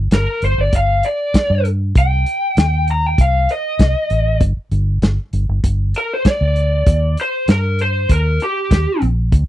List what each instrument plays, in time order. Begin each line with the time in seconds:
0.11 fingered electric bass G1, lead electric guitar A#4, snare, closed hi-hat
0.42 fingered electric bass G1, lead electric guitar C5, closed hi-hat
0.58 fingered electric bass G1, lead electric guitar D5
0.73 fingered electric bass G1, lead electric guitar F5, kick, closed hi-hat
1.03 lead electric guitar D5, closed hi-hat
1.34 muted fingered electric bass stroke, kick, snare, closed hi-hat
1.50 fingered electric bass G2
1.65 closed hi-hat
1.95 fingered electric bass C2, lead electric guitar G5, kick, closed hi-hat
2.26 closed hi-hat
2.57 fingered electric bass D#2, snare, closed hi-hat
2.88 lead electric guitar A#5, closed hi-hat
3.06 lead electric guitar G5
3.18 fingered electric bass C2, lead electric guitar F5, kick, closed hi-hat
3.49 lead electric guitar D#5, closed hi-hat
3.79 fingered electric bass C2, kick, snare, closed hi-hat
4.10 fingered electric bass A1, closed hi-hat
4.40 fingered electric bass G1, kick, closed hi-hat
4.57 muted fingered electric bass stroke
4.71 fingered electric bass G1, closed hi-hat
5.02 fingered electric bass G1, snare, closed hi-hat
5.33 fingered electric bass G1, closed hi-hat
5.49 fingered electric bass G1
5.64 fingered electric bass G1, kick, closed hi-hat
5.94 lead electric guitar A#4, closed hi-hat
6.13 lead electric guitar C5
6.25 muted fingered electric bass stroke, kick, snare, closed hi-hat
6.29 lead electric guitar D5
6.41 fingered electric bass D2
6.56 closed hi-hat
6.86 fingered electric bass D#2, kick, closed hi-hat
7.17 lead electric guitar C5, closed hi-hat
7.48 fingered electric bass G2, lead electric guitar A#4, snare, closed hi-hat
7.79 lead electric guitar C5, closed hi-hat
8.09 fingered electric bass D#2, lead electric guitar A#4, kick, closed hi-hat
8.40 lead electric guitar G4, closed hi-hat
8.71 fingered electric bass D#2, kick, snare, closed hi-hat
9.02 fingered electric bass A#1, closed hi-hat
9.32 fingered electric bass D2, kick, closed hi-hat